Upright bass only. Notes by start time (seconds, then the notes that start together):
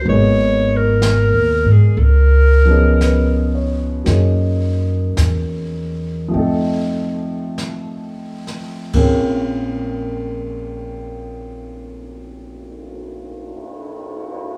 0.06 G#1
1.33 D#2
1.65 G#2
1.97 C#2
4.06 F#2
5.17 E2
6.34 F2
8.94 A#1